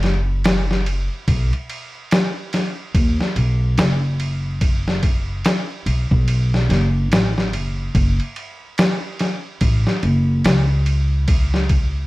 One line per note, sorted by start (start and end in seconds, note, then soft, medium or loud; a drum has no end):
0.00 1.06 F#1 medium
0.00 snare soft
0.00 ride medium
0.44 snare loud
0.44 ride medium
0.71 snare soft
0.86 ride medium
1.28 1.50 B1 medium
1.28 kick loud
1.28 ride medium
1.53 ride soft
1.70 ride medium
2.11 snare loud
2.11 ride medium
2.53 snare medium
2.53 ride medium
2.95 3.16 D#2 medium
2.95 kick loud
2.95 ride medium
3.20 snare soft
3.36 3.74 B1 medium
3.36 ride medium
3.78 5.41 F#1 medium
3.78 snare loud
3.78 ride medium
4.20 ride medium
4.61 kick loud
4.61 ride medium
4.88 snare soft
5.03 kick medium
5.03 ride medium
5.45 snare loud
5.45 ride medium
5.86 6.08 B1 medium
5.86 ride medium
6.11 6.69 B1 medium
6.11 kick medium
6.28 ride medium
6.54 snare soft
6.69 7.11 F#1 medium
6.69 snare soft
6.69 ride medium
7.11 7.53 A1 medium
7.11 snare loud
7.11 ride medium
7.38 snare soft
7.53 7.91 F#1 medium
7.53 ride medium
7.95 8.17 F#1 medium
7.95 kick loud
7.95 ride medium
8.20 ride soft
8.36 ride medium
8.78 snare loud
8.78 ride medium
9.19 snare medium
9.19 ride medium
9.61 9.83 A1 medium
9.61 kick loud
9.61 ride medium
9.87 snare soft
10.03 10.41 F#1 medium
10.03 ride medium
10.44 12.07 C#2 medium
10.44 snare loud
10.44 ride medium
10.86 ride medium
11.28 kick loud
11.28 ride medium
11.54 snare soft
11.69 kick medium
11.69 ride medium